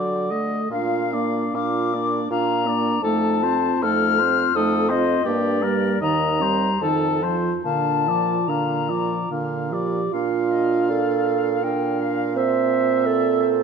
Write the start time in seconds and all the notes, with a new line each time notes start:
Already playing: D3 F#3 F#4 D5
0.31 A3 A4 D#5
0.71 A#2 D4 F4 F5
1.13 A#3 D4 D5
1.54 A#2 D4 F4 F5 D6
1.94 A#3 D4 D5
2.30 A#2 D4 F4 F5 A#5
2.67 A#3 D4 D5
3.02 F2 A3 D#4 A4 A5
3.43 C4 F4 C5
3.82 F2 A3 D#4 A4 F6
4.19 C4 F4 C5
4.55 F2 A3 D#4 A4 D#6
4.89 C4 F4 C5 D#5
5.25 G2 A#3 D4 G4 D5
5.62 G3 A#3 A#4
6.01 D#2 D#3 D#4 D#5 A#5
6.40 G3 C4 C5
6.80 F2 D#3 D#4 A4 A5
7.21 F3 F4 C5
7.64 A#2 D3 D4 F5 A5
8.07 F3 F4 D5
8.48 A#2 D3 D4 F5 A#5
8.89 F3 F4 D5
9.29 A#2 D3 D4 F5
9.71 F3 G4 D5
10.11 A#2 D4 F4 F5
10.51 D#5
10.90 A4 D5
11.26 F5
11.63 D4 A#4 F5 G5
12.00 F5
12.36 C4 C5 E5
13.06 A4 D5
13.41 C5